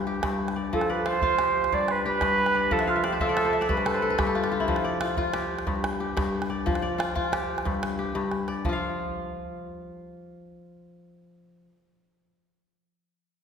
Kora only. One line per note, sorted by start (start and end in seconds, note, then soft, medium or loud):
0.00 0.22 G2 medium
0.00 0.76 F4 medium
0.07 1.38 G4 medium
0.23 0.78 G2 medium
0.56 0.89 D5 medium
0.73 1.77 F3 medium
0.90 2.00 D5 medium
1.06 1.22 F4 medium
1.23 2.74 F4 medium
1.39 2.05 G4 medium
1.73 2.21 G2 medium
2.06 3.47 G4 medium
2.22 2.76 G2 medium
2.55 3.03 D5 medium
2.71 3.75 F3 medium
2.80 2.95 E5 medium
2.87 3.27 F5 medium
2.96 3.20 E5 medium
3.04 3.29 D5 medium
3.12 3.44 C5 medium
3.21 3.59 F4 medium
3.21 3.36 E5 medium
3.29 3.61 D5 medium
3.37 3.53 E5 medium
3.45 3.75 C5 medium
3.53 4.41 E5 medium
3.61 4.72 D5 medium
3.69 4.17 G2 medium
3.69 4.00 B4 medium
3.77 3.94 C5 medium
3.85 4.02 A4 medium
3.94 4.16 C5 medium
4.02 4.26 A4 medium
4.10 5.33 B4 medium
4.18 4.74 G2 medium
4.18 4.43 G4 medium
4.27 5.58 A4 medium
4.35 4.51 F4 medium
4.43 5.33 G4 medium
4.52 5.00 F4 medium
4.60 5.07 E4 medium
4.68 5.73 F3 medium
4.84 5.95 D5 medium
5.01 5.17 F4 medium
5.18 6.69 F4 medium
5.34 6.00 G4 medium
5.67 6.15 G2 medium
6.00 7.32 G4 medium
6.17 6.71 G2 medium
6.50 6.82 D5 medium
6.66 7.70 F3 medium
6.82 7.93 D5 medium
6.98 7.15 F4 medium
7.15 8.67 F4 medium
7.32 7.98 G4 medium
7.65 8.14 G2 medium
7.99 9.40 G4 medium
8.15 8.69 G2 medium
8.48 9.59 D5 medium
8.65 11.67 F3 medium
8.65 11.71 F4 medium
8.73 11.75 F5 medium